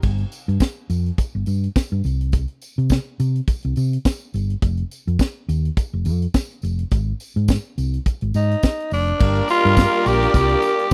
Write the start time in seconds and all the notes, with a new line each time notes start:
0.02 G1, kick, crash, tambourine
0.18 closed hi-hat
0.32 closed hi-hat, tambourine
0.48 G2, closed hi-hat
0.60 kick, snare, tambourine
0.90 F2, closed hi-hat, tambourine
1.06 closed hi-hat
1.18 kick, closed hi-hat, tambourine
1.35 G1
1.46 G2, closed hi-hat, tambourine
1.64 closed hi-hat
1.76 muted fingered electric bass stroke, kick, snare, tambourine
1.92 G2
2.04 C2, closed hi-hat, tambourine
2.21 closed hi-hat
2.32 kick, closed hi-hat, tambourine
2.48 closed hi-hat
2.62 closed hi-hat, tambourine
2.78 C3, closed hi-hat
2.90 kick, snare, tambourine
3.20 C3, closed hi-hat, tambourine
3.35 closed hi-hat
3.48 kick, closed hi-hat, tambourine
3.62 C2, closed hi-hat
3.76 C3, closed hi-hat, tambourine
3.93 closed hi-hat
4.05 kick, snare, tambourine
4.34 G1, closed hi-hat, tambourine
4.50 closed hi-hat
4.62 F1, kick, closed hi-hat, tambourine
4.77 closed hi-hat
4.91 closed hi-hat, tambourine
5.07 F2, closed hi-hat
5.19 kick, snare, tambourine
5.48 D#2, closed hi-hat, tambourine
5.65 closed hi-hat
5.77 kick, closed hi-hat, tambourine
5.93 F1
6.05 F2, closed hi-hat, tambourine
6.22 closed hi-hat
6.34 kick, snare, tambourine
6.51 closed hi-hat
6.62 F1, closed hi-hat, tambourine
6.79 closed hi-hat
6.91 G#1, kick, closed hi-hat, tambourine
7.20 closed hi-hat, tambourine
7.36 G#2, closed hi-hat
7.48 kick, snare, tambourine
7.78 C2, closed hi-hat, tambourine
7.94 closed hi-hat
8.06 kick, closed hi-hat, tambourine
8.21 G#1, closed hi-hat
8.34 G#2 D#4, closed hi-hat, tambourine
8.51 closed hi-hat
8.63 kick, snare, tambourine
8.80 closed hi-hat
8.91 F1 D4, open hi-hat, tambourine
9.08 closed hi-hat
9.20 G1 G3 A#3 D4 F4 G4 A#4 D5, kick, crash, tambourine
9.35 closed hi-hat
9.49 F4, closed hi-hat, tambourine
9.65 G2, closed hi-hat
9.77 kick, snare, tambourine
9.94 closed hi-hat
10.06 A#1 G4, closed hi-hat, tambourine
10.22 snare, closed hi-hat
10.34 C2 G4, kick, closed hi-hat, tambourine
10.49 closed hi-hat
10.62 closed hi-hat, tambourine
10.79 closed hi-hat